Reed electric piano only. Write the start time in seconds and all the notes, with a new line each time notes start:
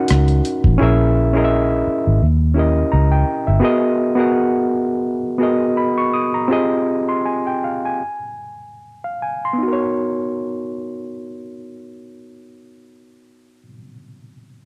Already playing: C#4 D#4 F#4 A#4 F5 F#5
0.78 C#4 E4 G#4 A#4
0.83 E5
1.33 C#4 E4 G#4 A#4
1.38 D#5
1.44 E5
2.54 C#4 E4 G4 A#4
2.59 D#5
2.92 A#5
3.12 G5
3.47 E5
3.60 B3 F#4 G#4 A#4
3.65 D#5
4.15 B3 F#4 G#4 A#4
4.20 F#5
5.38 B3 F#4 G#4 A#4
5.43 D#5
5.77 B5
5.98 C#6
6.14 D#6
6.34 A#5
6.48 C4 F4 G4 G#4
6.52 D#5
7.09 C6
7.26 G#5
7.47 G5
7.64 F5
7.86 G#5
9.04 F5
9.22 G#5
9.45 C6
9.53 B3
9.58 D#4
9.63 F#4
9.68 A#4
9.73 C#5